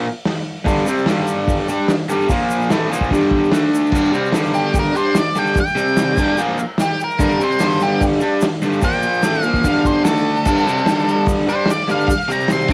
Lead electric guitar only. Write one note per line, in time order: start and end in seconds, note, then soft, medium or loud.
4.55 4.75 G4 medium
4.79 4.96 A#4 medium
4.97 5.16 C5 medium
5.18 5.37 D5 loud
5.39 5.58 G5 medium
5.60 6.38 G5 medium
6.81 7.01 G4 loud
7.04 7.42 A#4 medium
7.44 7.82 C5 medium
7.83 8.02 G4 loud
8.84 9.43 G5 loud
9.43 9.63 F5 loud
9.65 9.85 F5 loud
9.86 10.04 C5 medium
10.04 11.24 A4 loud
11.49 11.68 C5 loud
11.71 11.90 D5 loud
11.91 12.30 F5 medium
12.32 12.51 A#5 loud
12.52 12.71 C6 loud